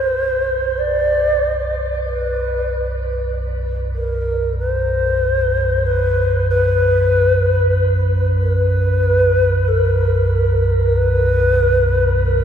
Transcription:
Already playing: synth drone B1 F#2, shakuhachi C5
0.78 shakuhachi D5
2.05 shakuhachi B4
3.95 shakuhachi A#4
4.59 shakuhachi C5
5.86 shakuhachi B4
6.50 shakuhachi B4
8.42 shakuhachi A#4
8.56 shakuhachi B4
9.68 shakuhachi A#4
10.97 shakuhachi B4
12.25 shakuhachi A#4

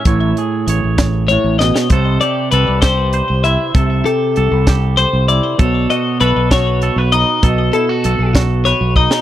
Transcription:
Already playing: clean electric guitar E5
0.05 fingered electric bass A1, clean electric guitar A2 C#5, kick, closed hi-hat
0.37 clean electric guitar G#4, closed hi-hat
0.67 fingered electric bass A1, clean electric guitar C#5, closed hi-hat
0.84 fingered electric bass A1
0.98 kick, snare, closed hi-hat
1.28 clean electric guitar A2 C#5, closed hi-hat
1.44 fingered electric bass A1
1.59 clean electric guitar B2 D#5, snare
1.76 snare
1.90 fingered electric bass C2, clean electric guitar C3 A4 C5, kick, closed hi-hat
2.21 clean electric guitar G4 D5, closed hi-hat
2.51 fingered electric bass C2, clean electric guitar A4 B4, closed hi-hat
2.68 fingered electric bass C2
2.82 clean electric guitar G4 C5, kick, snare, closed hi-hat
3.13 clean electric guitar C5, closed hi-hat
3.30 fingered electric bass C2
3.44 clean electric guitar E4 E5, closed hi-hat
3.75 fingered electric bass C2, clean electric guitar C3 A4, kick, closed hi-hat
4.05 clean electric guitar G4 A4, closed hi-hat
4.36 fingered electric bass C2, clean electric guitar A4, closed hi-hat
4.52 fingered electric bass C2
4.67 clean electric guitar G4, kick, snare, closed hi-hat
4.97 clean electric guitar C5, closed hi-hat
5.13 fingered electric bass C2
5.28 clean electric guitar E4 D5, closed hi-hat
5.58 fingered electric bass B1, clean electric guitar B2 A4 C#5, kick, closed hi-hat
5.90 clean electric guitar F#4 D#5, closed hi-hat
6.20 fingered electric bass B1, clean electric guitar A4 B4, closed hi-hat
6.36 fingered electric bass B1
6.51 clean electric guitar F#4 C#5, kick, snare, closed hi-hat
6.82 clean electric guitar A4, closed hi-hat
6.96 fingered electric bass B1, clean electric guitar B4
7.12 clean electric guitar D#4 D#5, closed hi-hat
7.43 fingered electric bass B1, clean electric guitar B2 A4, kick, closed hi-hat
7.73 clean electric guitar E4 A4, closed hi-hat
7.89 clean electric guitar F#4
8.04 fingered electric bass B1, clean electric guitar A4, closed hi-hat
8.19 fingered electric bass B1
8.35 clean electric guitar F#4, kick, snare, closed hi-hat
8.65 clean electric guitar B4 C#5, closed hi-hat
8.81 fingered electric bass B1
8.96 clean electric guitar D#4 D#5, kick
9.11 snare

